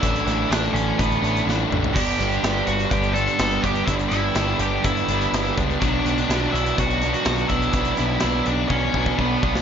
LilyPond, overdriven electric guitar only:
\new Staff \with { instrumentName = "Overdriven electric guitar" } { \time 4/4 \key b \minor \tempo 4 = 124 <a, d e a d'>8 <e a d'>8 <a, d e a d'>4. <e a d'>8 <d e a d'>8 <e a d'>8 | <g, d g b d'>8 <g b d'>8 <g, d g b d'>4. <g b d'>8 <d g b d'>8 <g b d'>8 | <g, d g b d'>8 <g b d'>8 <g, d g b d'>4. <g b d'>8 <d g b d'>8 <g b d'>8 | <b, fis b d'>8 <fis b d'>8 <b, fis b d'>4. <fis b d'>8 <b, fis b d'>8 <fis b d'>8 |
<b, fis b d'>8 <fis b d'>8 <b, fis b d'>4. <fis b d'>8 <b, fis b d'>8 <fis b d'>8 | }